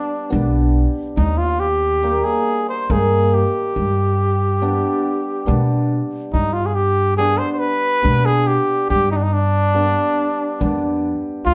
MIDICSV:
0, 0, Header, 1, 4, 480
1, 0, Start_track
1, 0, Tempo, 857143
1, 657, Time_signature, 3, 2, 24, 8
1, 6462, End_track
2, 0, Start_track
2, 0, Title_t, "Cornet"
2, 0, Program_c, 0, 56
2, 0, Note_on_c, 0, 62, 79
2, 410, Note_off_c, 0, 62, 0
2, 654, Note_on_c, 0, 63, 75
2, 771, Note_on_c, 0, 65, 78
2, 779, Note_off_c, 0, 63, 0
2, 896, Note_on_c, 0, 67, 89
2, 904, Note_off_c, 0, 65, 0
2, 1255, Note_on_c, 0, 68, 77
2, 1264, Note_off_c, 0, 67, 0
2, 1497, Note_off_c, 0, 68, 0
2, 1506, Note_on_c, 0, 72, 74
2, 1631, Note_on_c, 0, 68, 82
2, 1640, Note_off_c, 0, 72, 0
2, 1871, Note_on_c, 0, 67, 70
2, 1879, Note_off_c, 0, 68, 0
2, 3307, Note_off_c, 0, 67, 0
2, 3546, Note_on_c, 0, 63, 79
2, 3658, Note_on_c, 0, 65, 78
2, 3666, Note_off_c, 0, 63, 0
2, 3730, Note_on_c, 0, 68, 63
2, 3739, Note_off_c, 0, 65, 0
2, 3778, Note_on_c, 0, 67, 91
2, 3786, Note_off_c, 0, 68, 0
2, 4014, Note_off_c, 0, 67, 0
2, 4017, Note_on_c, 0, 68, 91
2, 4132, Note_on_c, 0, 72, 80
2, 4140, Note_off_c, 0, 68, 0
2, 4211, Note_off_c, 0, 72, 0
2, 4211, Note_on_c, 0, 72, 66
2, 4252, Note_on_c, 0, 71, 105
2, 4261, Note_off_c, 0, 72, 0
2, 4622, Note_on_c, 0, 68, 90
2, 4631, Note_off_c, 0, 71, 0
2, 4745, Note_on_c, 0, 67, 79
2, 4753, Note_off_c, 0, 68, 0
2, 4980, Note_off_c, 0, 67, 0
2, 4983, Note_on_c, 0, 67, 88
2, 5093, Note_off_c, 0, 67, 0
2, 5104, Note_on_c, 0, 63, 73
2, 5132, Note_on_c, 0, 62, 59
2, 5141, Note_off_c, 0, 63, 0
2, 5169, Note_on_c, 0, 63, 71
2, 5177, Note_off_c, 0, 62, 0
2, 5228, Note_on_c, 0, 62, 90
2, 5236, Note_off_c, 0, 63, 0
2, 6181, Note_off_c, 0, 62, 0
2, 6417, Note_on_c, 0, 65, 93
2, 6462, Note_off_c, 0, 65, 0
2, 6462, End_track
3, 0, Start_track
3, 0, Title_t, "Hammered dulcimer"
3, 0, Program_c, 1, 15
3, 0, Note_on_c, 1, 55, 53
3, 162, Note_off_c, 1, 55, 0
3, 168, Note_on_c, 1, 55, 68
3, 168, Note_on_c, 1, 59, 60
3, 171, Note_on_c, 1, 62, 75
3, 412, Note_off_c, 1, 59, 0
3, 414, Note_off_c, 1, 62, 0
3, 685, Note_off_c, 1, 55, 0
3, 1135, Note_on_c, 1, 55, 62
3, 1137, Note_on_c, 1, 58, 45
3, 1142, Note_on_c, 1, 63, 56
3, 1378, Note_off_c, 1, 58, 0
3, 1380, Note_off_c, 1, 63, 0
3, 1623, Note_on_c, 1, 51, 59
3, 1625, Note_on_c, 1, 58, 42
3, 1628, Note_on_c, 1, 63, 61
3, 1647, Note_off_c, 1, 55, 0
3, 1863, Note_off_c, 1, 58, 0
3, 1864, Note_off_c, 1, 63, 0
3, 2128, Note_off_c, 1, 51, 0
3, 2585, Note_on_c, 1, 55, 66
3, 2587, Note_on_c, 1, 62, 72
3, 2589, Note_on_c, 1, 59, 61
3, 2824, Note_off_c, 1, 62, 0
3, 2825, Note_off_c, 1, 59, 0
3, 3051, Note_off_c, 1, 55, 0
3, 3058, Note_on_c, 1, 55, 65
3, 3061, Note_on_c, 1, 59, 59
3, 3063, Note_on_c, 1, 62, 67
3, 3301, Note_off_c, 1, 59, 0
3, 3302, Note_off_c, 1, 62, 0
3, 3569, Note_off_c, 1, 55, 0
3, 4021, Note_on_c, 1, 55, 61
3, 4025, Note_on_c, 1, 59, 51
3, 4028, Note_on_c, 1, 62, 63
3, 4263, Note_off_c, 1, 59, 0
3, 4264, Note_off_c, 1, 62, 0
3, 4485, Note_off_c, 1, 55, 0
3, 4492, Note_on_c, 1, 55, 51
3, 4492, Note_on_c, 1, 59, 49
3, 4497, Note_on_c, 1, 62, 62
3, 4736, Note_off_c, 1, 59, 0
3, 4738, Note_off_c, 1, 62, 0
3, 5448, Note_off_c, 1, 55, 0
3, 5454, Note_on_c, 1, 55, 62
3, 5459, Note_on_c, 1, 59, 56
3, 5460, Note_on_c, 1, 62, 74
3, 5699, Note_off_c, 1, 59, 0
3, 5699, Note_off_c, 1, 62, 0
3, 5929, Note_off_c, 1, 55, 0
3, 5935, Note_on_c, 1, 55, 64
3, 5940, Note_on_c, 1, 59, 56
3, 5941, Note_on_c, 1, 62, 73
3, 6178, Note_off_c, 1, 59, 0
3, 6179, Note_off_c, 1, 62, 0
3, 6444, Note_off_c, 1, 55, 0
3, 6462, End_track
4, 0, Start_track
4, 0, Title_t, "Upright bass"
4, 0, Program_c, 2, 32
4, 182, Note_on_c, 2, 35, 91
4, 469, Note_off_c, 2, 35, 0
4, 657, Note_on_c, 2, 39, 86
4, 1234, Note_off_c, 2, 39, 0
4, 1622, Note_on_c, 2, 43, 93
4, 1910, Note_off_c, 2, 43, 0
4, 2106, Note_on_c, 2, 43, 72
4, 2681, Note_off_c, 2, 43, 0
4, 3069, Note_on_c, 2, 47, 92
4, 3355, Note_off_c, 2, 47, 0
4, 3548, Note_on_c, 2, 43, 74
4, 4122, Note_off_c, 2, 43, 0
4, 4507, Note_on_c, 2, 47, 97
4, 4792, Note_off_c, 2, 47, 0
4, 4986, Note_on_c, 2, 43, 81
4, 5559, Note_off_c, 2, 43, 0
4, 5942, Note_on_c, 2, 41, 87
4, 6227, Note_off_c, 2, 41, 0
4, 6417, Note_on_c, 2, 39, 70
4, 6462, Note_off_c, 2, 39, 0
4, 6462, End_track
0, 0, End_of_file